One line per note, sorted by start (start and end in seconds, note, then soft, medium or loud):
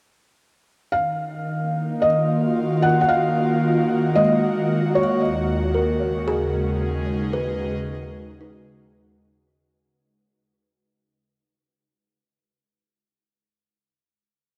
0.92 5.22 D#3 medium
0.92 2.05 F5 medium
1.59 6.91 A#3 medium
1.98 5.23 F4 medium
1.98 2.86 D#5 medium
2.26 9.48 F#4 medium
2.82 2.99 F#5 medium
3.01 3.09 F#5 medium
3.09 4.19 F5 medium
4.15 5.96 G#3 soft
4.15 4.98 D#5 medium
4.95 5.20 C#5 medium
5.22 9.48 D#2 medium
5.74 10.87 A#4 soft
5.95 9.47 C#3 medium
6.28 7.55 G#4 medium
6.36 9.47 G#3 medium
6.67 9.48 D#4 medium
7.33 12.48 B4 medium
8.41 10.23 D#4 medium